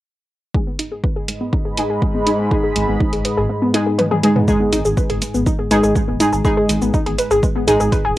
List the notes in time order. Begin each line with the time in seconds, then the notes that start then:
0.54 G#2 G#3 D#4 G#4 D#5 B5, kick
0.67 B3
0.79 D#4, closed hi-hat
0.92 G#4
1.04 B4, kick
1.16 G#4
1.28 G#3, closed hi-hat
1.41 B3
1.53 D#4, kick
1.65 G#4
1.77 G#3 D#4 G#4 B4, closed hi-hat
1.90 G#4
2.02 G#3, kick
2.15 B3
2.27 G#3 D#4 G#4, closed hi-hat
2.39 G#4
2.51 G#3 D#4 G#4 B4, kick
2.64 G#4
2.76 G#1 G#3, closed hi-hat
2.88 G#1 B3
3.00 D#4, kick
3.13 G#1 G#4, closed hi-hat
3.25 B4, closed hi-hat
3.37 G#1 G#4
3.50 G#3
3.62 B3
3.74 G#3 D#4 G#4, closed hi-hat
3.87 G#4
3.99 B4, closed hi-hat, high tom
4.11 G#4, high tom
4.23 G#3 D#4 G#4, closed hi-hat
4.36 B3, mid tom
4.48 G#2 G#3 D#4 G#4, kick, shaker
4.60 B3
4.73 G#1 D#4, closed hi-hat, shaker
4.85 G#1 G#4, shaker
4.97 B4, kick, shaker
5.10 G#1 G#4, closed hi-hat
5.22 G#3, closed hi-hat, shaker
5.34 G#1 B3, shaker
5.46 D#4, kick, shaker
5.59 G#4
5.71 G#1 G#3 D#4 G#4 B4, closed hi-hat, shaker
5.83 G#1 G#4, shaker
5.95 G#3, kick, shaker
6.08 D#1 B3
6.20 G#3 D#4 G#4, closed hi-hat, shaker
6.33 G#1 G#4, shaker
6.45 G#3 D#4 G#4 B4, kick, shaker
6.57 G#4
6.69 G#1 G#3, closed hi-hat, shaker
6.82 G#1 B3, shaker
6.94 D#4, kick, shaker
7.06 G#1 G#4, closed hi-hat
7.18 B4, closed hi-hat, shaker
7.31 G#1 G#4, shaker
7.43 G#3, kick, shaker
7.56 B3
7.68 G#1 G#3 D#4 G#4, closed hi-hat, shaker
7.80 G#1 G#4, shaker
7.92 B4, kick, closed hi-hat, shaker
8.05 D#1 G#4